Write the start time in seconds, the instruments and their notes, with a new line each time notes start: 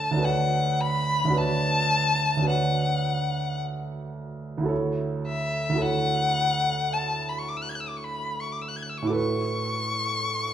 Already playing: grand piano D2 D4 F#4 A4 C#5, violin A5
0.11 grand piano D2 D4
0.17 grand piano F#4 B4
0.22 grand piano C#5, violin F#5
0.80 violin B5
1.25 grand piano D2 D4
1.30 grand piano F#4 B4
1.35 grand piano C#5, violin A5
2.37 grand piano D2 D4
2.42 grand piano F#4 B4
2.47 grand piano C#5, violin F#5
4.58 grand piano D2 E4
4.63 grand piano F#4 A4
4.69 grand piano C#5
5.27 violin E5
5.69 grand piano D2 E4
5.75 grand piano F#4 A4
5.80 grand piano C#5, violin F#5
6.93 violin A5
7.29 violin B5
7.38 violin C#6
7.49 violin D6
7.57 violin E6
7.62 violin F#6
7.69 violin G#6
7.75 violin F#6
7.80 violin E6
7.88 violin D6
7.97 violin C#6
8.04 violin B5
8.40 violin C#6
8.52 violin D6
8.62 violin E6
8.68 violin F#6
8.76 violin G#6
8.82 violin F#6
8.89 violin E6
8.97 violin C#6
9.02 grand piano A2 E4
9.07 grand piano F#4 A4, violin D6
9.13 grand piano B4, violin C#6